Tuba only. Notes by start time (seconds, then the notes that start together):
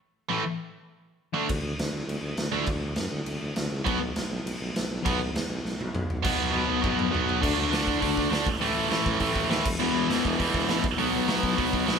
1.50 D2
1.63 D2
1.78 D2
1.93 D2
2.07 D2
2.21 D2
2.37 D2
2.52 D2
2.67 D2
2.96 F#2
3.11 D2
3.26 D2
3.41 D2
3.57 D2
3.71 C#2
3.86 B1
4.00 B1
4.15 B1
4.30 B1
4.44 B1
4.60 B1
4.75 B1
4.89 B1
5.06 B1
5.33 E2
5.49 B1
5.63 B1
5.79 B1
5.94 B1
6.09 B1
6.25 B1
6.38 B1
6.53 B1
6.68 B1
6.84 B1
6.97 B1
7.11 B1
7.43 D2
7.57 D2
7.70 D2
8.02 D2
8.18 D2
8.31 D2
8.46 A1
8.61 A1
8.75 A1
8.89 A1
9.06 A1
9.20 A1
9.35 A1
9.49 D#2
9.66 E1
9.78 E1
9.94 E1
10.09 E1
10.25 E1
10.39 E1
10.54 E1
10.69 A1
10.84 B1
10.99 B1
11.14 B1
11.30 B1
11.43 B1
11.58 B1
11.73 B1
11.87 B1